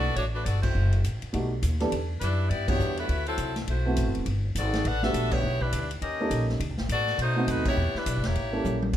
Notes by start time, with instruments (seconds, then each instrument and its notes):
Already playing: upright bass B1, saxophone section B3 F#4 A4 D5
0.16 upright bass A1, saxophone section A3 D4 F#4 C#5, kick, ride
0.34 saxophone section A3 D4 F#4 B4
0.45 upright bass G1, saxophone section B3 F#4 A4 D5, kick, hi-hat pedal, ride
0.62 saxophone section A3 E4 F#4 C5, kick, crash
0.75 upright bass F#1
0.93 ride
1.04 upright bass A1, kick, hi-hat pedal, ride
1.22 muted upright bass stroke, ride
1.33 upright bass B1, grand piano G3 A3 B3 D#4 F#4, kick, ride
1.63 upright bass D#2, kick, hi-hat pedal, ride
1.80 grand piano E3 G3 B3 D4 A4, snare, ride
1.92 upright bass E2, kick, ride
2.21 upright bass F#2, saxophone section G3 D4 E4 B4, kick, hi-hat pedal, ride
2.49 upright bass G2, saxophone section B3 E4 G4 D5, kick, ride
2.68 grand piano E3 G3 B3 D4 F#4, saxophone section B3 E4 G4 C#5, kick, crash
2.79 upright bass E2, hi-hat pedal
2.97 saxophone section A3 E4 F#4 B4, ride
3.08 upright bass D2, kick, ride
3.26 saxophone section F#3 C4 E4 A4, ride
3.38 upright bass C2, kick, hi-hat pedal, ride
3.56 snare, ride
3.67 upright bass B1, saxophone section A3 E4 F#4 C5, kick, ride
3.86 grand piano E3 A3 B3 C4 F#4
3.96 upright bass A1, kick, hi-hat pedal, ride
4.07 upright bass F#1
4.15 upright bass D1, ride
4.26 upright bass G1, kick, ride
4.55 upright bass G#1, saxophone section B3 F#4 A4 D5, kick, hi-hat pedal, ride
4.73 snare, ride
4.85 upright bass A1, saxophone section D4 A4 B4 F#5, kick, ride
5.02 grand piano G3 A3 B3 D4 F#4, saxophone section D4 A4 B4 E5, snare
5.14 upright bass A#1, kick, hi-hat pedal, ride
5.31 saxophone section B3 E4 G4 C#5, kick, crash
5.44 upright bass B1
5.61 saxophone section G3 D4 E4 B4, kick
5.72 upright bass D2, kick, hi-hat pedal, ride
5.91 ride
6.01 upright bass D#2, saxophone section C#4 G4 A#4 D#5, kick, ride
6.20 grand piano G3 A#3 C#4 D#4 A4
6.30 upright bass A#1, kick, hi-hat pedal, ride
6.49 snare
6.60 upright bass D2, kick, ride
6.70 upright bass B1
6.78 upright bass A1, snare
6.89 upright bass A2, saxophone section B3 F#4 D5, kick, hi-hat pedal, ride
6.93 saxophone section A4
7.07 snare
7.18 upright bass B2, saxophone section A3 D#4 C5, kick, ride
7.22 saxophone section F#4
7.36 grand piano A3 B3 C4 D#4 F#4
7.47 upright bass F#2, saxophone section A3 D#4 F#4 B4, kick, hi-hat pedal, ride
7.57 upright bass D#2
7.65 upright bass B1, saxophone section B3 E4 G4 C#5, kick, crash
7.77 upright bass E2
7.94 saxophone section G3 D4 E4 B4, muted upright bass stroke, snare
8.06 upright bass B1, kick, hi-hat pedal, ride
8.17 upright bass G1
8.23 upright bass E1, saxophone section A#3 E4 G4 C#5, snare, ride
8.35 upright bass A1, kick, ride
8.53 grand piano G3 A#3 C#4 E4 A4
8.64 upright bass A#1, hi-hat pedal, high tom
8.82 high tom
8.93 upright bass D2, kick, crash